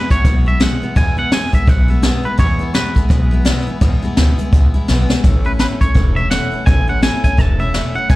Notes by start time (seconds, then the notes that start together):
Already playing: E2 B2 E3 G#3 B3 B4
0.10 E3 G#3 B3 E4 C#5, muted upright bass stroke, kick, closed hi-hat
0.24 B1 E3 G#3 B3 E4, kick, closed hi-hat
0.46 E3 G#3 B3 E4 E5
0.60 E2 B2 E3 G#3 B3 E4 F#5, snare, closed hi-hat
0.82 E3 G#3 B3 E4, muted upright bass stroke
0.96 E2 B2 E3 G#3 B3 E4 G#5, kick, closed hi-hat
1.17 E3 G#3 B3 E4 F#5
1.32 E2 B2 E3 G#3 B3 E4 G#5, snare, closed hi-hat
1.52 E3 G#3 B3 E4 E5, kick, closed hi-hat
1.67 B1 E3 G#3 B3 E4 F#5, kick, closed hi-hat
1.88 E3 G#3 B3 E4 E5
2.02 E2 B2 E3 G#3 B3 E4, snare, closed hi-hat
2.24 E3 G#3 B3 E4 B4, muted upright bass stroke
2.38 E2 B2 E3 G#3 B3 E4 C#5, kick, closed hi-hat
2.59 E3 G#3 B3 E4
2.74 E2 B2 E3 G#3 B3 E4 B4, snare, closed hi-hat
2.95 E3 G#3 B3 E4, kick, closed hi-hat
3.09 B1 E3 G#3 B3 E4, kick, closed hi-hat
3.31 E3 G#3 B3 E4
3.45 E2 B2 E3 G#3 B3 E4, snare, closed hi-hat
3.67 E3 G#3 B3 E4, muted upright bass stroke
3.81 E2 B2 E3 G#3 B3 E4, kick, closed hi-hat
4.02 E3 G#3 B3 E4, muted upright bass stroke
4.17 D2 E2 B2 E3 G#3 B3 E4, snare, closed hi-hat
4.38 E3 G#3 B3 E4, closed hi-hat
4.52 C#2 E3 G#3 B3 E4, kick, closed hi-hat
4.74 E3 G#3 B3 E4, muted upright bass stroke
4.88 B1 E2 B2 E3 G#3 B3 E4, snare
5.09 E3 G#3 B3 E4, snare
5.24 A1 A2 E3 A3 C#4 E4, kick, closed hi-hat
5.45 A3 C#4 E4 B4
5.59 A2 E3 A3 C#4 E4 B4, snare, closed hi-hat
5.80 A3 C#4 E4 C#5, muted upright bass stroke, kick, closed hi-hat
5.94 E1 E3 A3 C#4 E4, kick, closed hi-hat
6.16 A3 C#4 E4 E5
6.31 A2 E3 A3 C#4 E4 F#5, snare, closed hi-hat
6.52 A3 C#4 E4, muted upright bass stroke
6.66 A1 A2 E3 A3 C#4 E4 G#5, kick, closed hi-hat
6.88 A3 C#4 E4 F#5
7.02 A2 E3 A3 C#4 E4 G#5, snare, closed hi-hat
7.23 A3 C#4 E4 G#5, kick, closed hi-hat
7.37 E1 E3 A3 C#4 E4 A5, kick, closed hi-hat
7.59 A3 C#4 E4 E5
7.74 A2 E3 A3 C#4 E4, snare, closed hi-hat
7.95 A3 C#4 E4 F#5, muted upright bass stroke
8.09 E1 E2 B2 E3 G#3 B3 E4 G#5, kick, closed hi-hat